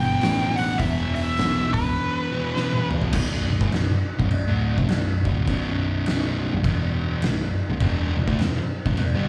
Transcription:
0.00 0.17 G1 loud
0.00 0.19 E2 medium
0.00 0.20 B2 medium
0.00 0.20 E3 medium
0.00 0.55 G5 loud
0.20 0.77 A1 medium
0.20 0.78 E2 medium
0.20 0.79 B2 medium
0.20 0.80 E3 medium
0.20 snare loud
0.20 open hi-hat medium
0.56 0.80 F#5 loud
0.56 open hi-hat medium
0.71 snare soft
0.78 1.34 E1 loud
0.78 2.31 E2 medium
0.78 2.32 B2 medium
0.78 1.13 E5 medium
0.78 kick loud
0.78 open hi-hat medium
0.84 2.31 E3 loud
1.15 1.70 E5 medium
1.15 open hi-hat medium
1.37 1.72 B1 medium
1.37 snare loud
1.37 open hi-hat medium
1.74 1.95 C#1 loud
1.74 2.87 B4 medium
1.74 kick medium
1.74 open hi-hat medium
2.32 2.54 E2 medium
2.32 2.55 B2 medium
2.32 2.54 E3 medium
2.55 3.12 E2 medium
2.55 3.13 B2 medium
2.55 3.14 E3 medium
2.55 snare medium
2.73 high tom medium
2.91 mid tom medium
3.02 floor tom medium
3.13 3.47 B0 medium
3.13 3.49 B1 loud
3.13 3.49 F#2 loud
3.13 3.50 B2 loud
3.13 kick loud
3.13 crash loud
3.13 crash medium
3.50 3.60 B0 medium
3.50 3.60 B1 medium
3.50 3.61 F#2 medium
3.61 3.72 A1 loud
3.61 3.71 A2 medium
3.61 3.72 E3 medium
3.61 kick loud
3.72 3.89 B0 medium
3.72 3.89 B1 medium
3.72 3.90 F#2 medium
3.72 snare loud
3.72 crash medium
3.90 muted distorted electric guitar stroke medium
3.90 muted picked electric bass stroke soft
4.18 4.30 B0 loud
4.18 4.30 B1 loud
4.18 4.30 F#2 loud
4.18 kick loud
4.31 4.48 B0 medium
4.31 4.47 B1 medium
4.31 4.48 F#2 medium
4.31 crash medium
4.48 4.76 D1 medium
4.48 4.76 D2 medium
4.48 4.77 A2 loud
4.48 4.77 D3 loud
4.77 4.88 F1 medium
4.77 4.88 F2 medium
4.77 4.88 C3 loud
4.77 kick loud
4.89 5.23 B0 medium
4.89 5.18 B1 medium
4.89 5.18 F#2 medium
4.89 snare loud
4.89 crash medium
5.25 5.46 D1 medium
5.25 5.47 D2 medium
5.25 5.47 A2 loud
5.25 5.47 D3 loud
5.25 kick loud
5.47 6.49 B0 loud
5.47 6.52 B1 loud
5.47 6.52 F#2 loud
5.47 6.53 B2 loud
5.47 kick loud
5.47 crash medium
6.06 snare loud
6.06 crash medium
6.53 6.64 B0 medium
6.53 6.64 B1 medium
6.53 6.64 F#2 medium
6.64 7.19 E1 loud
6.64 7.22 E2 loud
6.64 7.22 B2 loud
6.64 7.23 E3 loud
6.64 kick loud
6.64 crash medium
7.22 7.56 B0 medium
7.22 7.52 B1 medium
7.22 7.52 F#2 medium
7.22 snare loud
7.22 crash medium
7.69 7.80 B0 medium
7.69 7.80 B1 medium
7.69 7.81 F#2 medium
7.80 8.14 E1 loud
7.80 8.15 E2 loud
7.80 8.16 B2 loud
7.80 8.16 E3 loud
7.80 kick loud
7.80 crash medium
8.17 8.27 E1 medium
8.17 8.28 E2 medium
8.17 8.28 B2 medium
8.28 8.38 D2 loud
8.28 8.39 D3 medium
8.28 8.39 A3 loud
8.28 kick loud
8.39 8.56 E1 medium
8.39 8.57 E2 medium
8.39 8.58 B2 medium
8.39 snare loud
8.39 crash medium
8.57 muted picked electric bass stroke soft
8.57 muted distorted electric guitar stroke medium
8.85 8.96 E1 loud
8.85 8.96 E2 loud
8.85 8.96 B2 loud
8.85 kick loud
8.97 9.14 E1 medium
8.97 9.14 E2 medium
8.97 9.15 B2 medium
8.97 crash medium
9.14 9.29 G1 medium
9.14 9.29 G2 medium
9.14 9.29 D3 loud
9.14 9.29 G3 loud

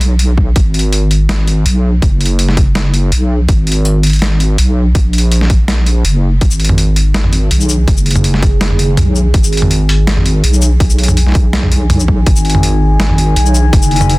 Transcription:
0.00 0.55 B1 loud
0.00 closed hi-hat medium
0.19 closed hi-hat medium
0.38 kick medium
0.56 1.64 G#1 loud
0.56 kick loud
0.56 closed hi-hat medium
0.74 closed hi-hat soft
0.79 closed hi-hat medium
0.93 closed hi-hat medium
1.11 closed hi-hat medium
1.29 snare loud
1.29 closed hi-hat medium
1.48 closed hi-hat medium
1.65 2.01 B1 medium
1.65 closed hi-hat medium
2.02 3.11 F#1 loud
2.02 kick loud
2.02 closed hi-hat medium
2.21 closed hi-hat soft
2.26 closed hi-hat medium
2.39 closed hi-hat medium
2.49 snare soft
2.57 kick loud
2.57 closed hi-hat medium
2.75 snare loud
2.75 closed hi-hat medium
2.94 closed hi-hat medium
3.12 3.47 B1 medium
3.12 closed hi-hat medium
3.49 4.57 G#1 medium
3.49 kick loud
3.49 closed hi-hat medium
3.67 closed hi-hat soft
3.72 closed hi-hat medium
3.85 closed hi-hat medium
4.03 closed hi-hat medium
4.07 closed hi-hat soft
4.10 closed hi-hat soft
4.13 closed hi-hat soft
4.16 closed hi-hat soft
4.19 snare loud
4.19 closed hi-hat soft
4.22 closed hi-hat medium
4.40 closed hi-hat medium
4.58 4.94 B1 loud
4.58 closed hi-hat medium
4.95 6.03 A#1 medium
4.95 kick loud
4.95 closed hi-hat medium
5.13 closed hi-hat soft
5.18 closed hi-hat medium
5.32 closed hi-hat medium
5.41 snare soft
5.50 kick medium
5.50 closed hi-hat medium
5.68 snare loud
5.68 closed hi-hat medium
5.86 closed hi-hat medium
6.05 6.40 F#1 loud
6.05 closed hi-hat medium
6.41 7.50 G#1 loud
6.41 14.19 D#3 medium
6.41 kick loud
6.41 closed hi-hat medium
6.51 14.19 D#4 medium
6.51 shaker medium
6.60 closed hi-hat soft
6.64 closed hi-hat medium
6.69 mid tom medium
6.78 closed hi-hat medium
6.93 13.76 G#4 medium
6.93 closed hi-hat medium
7.14 snare loud
7.14 closed hi-hat medium
7.22 14.19 G#5 medium
7.22 mid tom medium
7.33 closed hi-hat medium
7.51 7.86 B1 loud
7.51 closed hi-hat medium
7.61 shaker soft
7.69 shaker medium
7.88 8.96 F#1 loud
7.88 kick loud
7.88 closed hi-hat medium
7.97 shaker medium
8.06 closed hi-hat soft
8.11 closed hi-hat medium
8.16 mid tom medium
8.16 shaker soft
8.24 closed hi-hat medium
8.34 snare soft
8.43 kick loud
8.43 closed hi-hat medium
8.61 snare loud
8.61 closed hi-hat medium
8.71 mid tom medium
8.79 closed hi-hat medium
8.97 9.33 B1 medium
8.97 closed hi-hat medium
8.97 mid tom medium
9.16 shaker soft
9.34 10.42 G#1 medium
9.34 kick loud
9.34 closed hi-hat medium
9.44 shaker medium
9.53 closed hi-hat medium
9.57 closed hi-hat medium
9.62 mid tom medium
9.71 closed hi-hat medium
9.89 closed hi-hat medium
10.07 snare loud
10.07 closed hi-hat medium
10.17 mid tom soft
10.26 closed hi-hat medium
10.44 10.79 B1 loud
10.44 closed hi-hat medium
10.53 shaker soft
10.62 shaker medium
10.80 11.34 B1 medium
10.80 kick loud
10.80 closed hi-hat medium
10.90 shaker medium
10.98 closed hi-hat soft
11.03 closed hi-hat medium
11.08 mid tom medium
11.08 shaker soft
11.17 closed hi-hat medium
11.27 snare soft
11.29 snare soft
11.32 12.25 B1 loud
11.32 kick loud
11.32 snare soft
11.32 closed hi-hat medium
11.53 snare loud
11.53 closed hi-hat medium
11.63 mid tom soft
11.72 closed hi-hat medium
11.90 closed hi-hat medium
11.90 mid tom medium
12.00 shaker soft
12.08 kick medium
12.26 13.35 G#1 loud
12.26 kick loud
12.26 closed hi-hat medium
12.36 shaker medium
12.45 closed hi-hat soft
12.50 closed hi-hat medium
12.55 mid tom medium
12.63 closed hi-hat medium
13.00 snare loud
13.00 closed hi-hat medium
13.10 mid tom soft
13.18 closed hi-hat medium
13.36 13.72 B1 medium
13.36 closed hi-hat medium
13.46 shaker soft
13.55 shaker medium
13.65 14.19 F#4 medium
13.73 14.19 F#1 loud
13.73 kick loud
13.73 closed hi-hat medium
13.83 shaker medium
13.91 closed hi-hat soft
13.96 closed hi-hat medium
14.01 mid tom medium
14.01 shaker soft
14.10 closed hi-hat medium

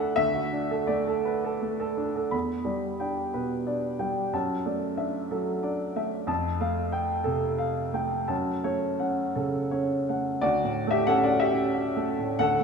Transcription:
0.00 0.13 D2 medium
0.00 0.20 A3 medium
0.00 0.20 D4 medium
0.00 0.28 A4 medium
0.00 0.20 B4 soft
0.00 0.20 D5 loud
0.00 0.16 E5 medium
0.00 0.17 F#5 medium
0.16 2.29 D2 medium
0.16 0.89 E5 medium
0.34 0.64 F#4 soft
0.53 0.82 D4 soft
0.71 1.00 A4 soft
0.87 1.18 A3 soft
0.87 1.97 D5 medium
1.07 1.37 A4 soft
1.25 1.44 B4 soft
1.44 1.73 A4 soft
1.62 1.91 A3 soft
1.80 2.09 A4 soft
1.97 2.26 D4 soft
2.16 2.33 A4 soft
2.31 4.28 E2 soft
2.31 2.86 B5 soft
2.65 3.20 G3 soft
2.65 3.20 D5 soft
3.00 3.31 D4 soft
3.00 3.54 G5 soft
3.34 3.87 B2 soft
3.34 3.86 B4 soft
3.67 3.96 D4 soft
3.67 4.19 D5 soft
3.99 4.32 G3 soft
3.99 4.32 G5 soft
4.33 6.25 F#2 soft
4.33 4.86 A5 soft
4.66 5.18 A3 soft
4.66 5.18 D5 soft
4.97 5.27 D4 soft
4.97 5.50 E5 soft
5.31 5.83 F#3 soft
5.31 5.83 A4 soft
5.63 5.92 D4 soft
5.63 6.15 D5 soft
5.96 6.28 A3 soft
5.96 6.28 E5 soft
6.27 8.25 F2 medium
6.27 6.80 A5 medium
6.60 7.13 A3 soft
6.60 7.13 F5 medium
6.92 7.46 G5 medium
7.24 7.80 C3 soft
7.24 7.80 A4 soft
7.58 8.15 F5 soft
7.93 8.29 A3 soft
7.93 8.30 G5 soft
8.28 10.37 F#2 medium
8.28 8.86 A5 soft
8.64 9.21 A3 soft
8.64 9.21 C#5 soft
8.99 9.32 C#4 soft
8.99 9.57 F#5 soft
9.36 9.93 C#3 soft
9.36 9.93 A4 soft
9.71 10.04 C#4 soft
9.71 10.28 C#5 soft
10.09 10.43 A3 soft
10.09 10.43 F#5 soft
10.41 12.36 D2 medium
10.41 10.89 F#4 medium
10.41 10.92 D5 medium
10.64 11.00 A2 soft
10.87 11.22 A3 medium
10.87 11.08 E5 medium
10.92 11.07 G4 medium
11.07 11.43 C#4 soft
11.07 11.24 A4 medium
11.07 11.24 F#5 medium
11.23 11.28 F#4 medium
11.23 11.41 D5 medium
11.30 11.65 F#4 soft
11.40 12.36 G4 medium
11.40 12.39 E5 medium
11.52 11.88 C#4 soft
11.74 12.10 F#4 soft
11.97 12.32 A3 medium
12.18 12.54 A2 soft
12.39 12.64 D2 medium
12.39 12.64 A4 medium
12.39 12.64 F#5 medium
12.60 12.64 A3 soft

